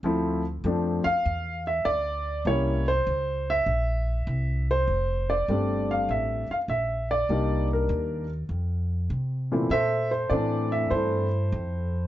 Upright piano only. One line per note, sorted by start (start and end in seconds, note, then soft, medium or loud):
0.04 0.41 F3 medium
0.04 0.42 A3 medium
0.04 0.42 C4 medium
0.04 0.42 E4 medium
0.64 1.02 F3 medium
0.64 1.02 A3 medium
0.64 1.03 C4 medium
0.64 1.03 D4 medium
1.04 1.62 F5 loud
1.67 1.86 E5 medium
1.85 2.42 D5 medium
2.46 2.83 G3 medium
2.46 2.83 A#3 medium
2.46 2.84 C#4 soft
2.46 2.84 E4 medium
2.46 2.85 C#5 medium
2.88 3.50 C5 medium
3.50 4.66 E5 loud
4.71 5.32 C5 medium
5.30 5.92 D5 medium
5.49 6.42 G3 medium
5.49 6.42 A3 medium
5.49 6.43 C4 soft
5.49 6.43 D4 medium
5.91 6.10 F5 medium
6.11 6.48 E5 medium
6.51 6.56 F5 medium
6.70 7.08 E5 medium
7.11 7.67 D5 medium
7.29 8.23 G3 medium
7.29 8.23 A#3 medium
7.29 8.23 D4 medium
7.29 8.24 D#4 medium
7.73 8.28 A#4 medium
9.52 9.69 A#2 medium
9.52 9.69 E3 medium
9.52 9.69 A3 medium
9.52 9.69 C4 medium
9.52 9.69 E4 medium
9.71 10.89 A4 medium
9.71 10.10 C5 medium
9.71 10.10 E5 loud
10.11 10.31 C5 medium
10.30 11.25 E3 medium
10.30 11.25 A3 medium
10.30 11.25 C4 medium
10.30 11.26 D4 medium
10.30 10.73 D5 medium
10.72 10.92 E5 medium
10.90 12.07 A4 medium
10.90 12.07 C5 medium
10.95 12.07 E4 medium